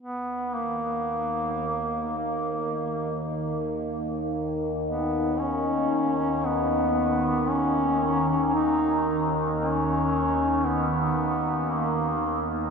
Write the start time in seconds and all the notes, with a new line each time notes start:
0.02 D#2 D#3 B3
0.54 A#3
2.17 A#3
4.86 B3
5.39 C#4
6.45 B3
7.49 C#4
8.54 D#4
9.61 C#4
10.66 B3
11.72 A#3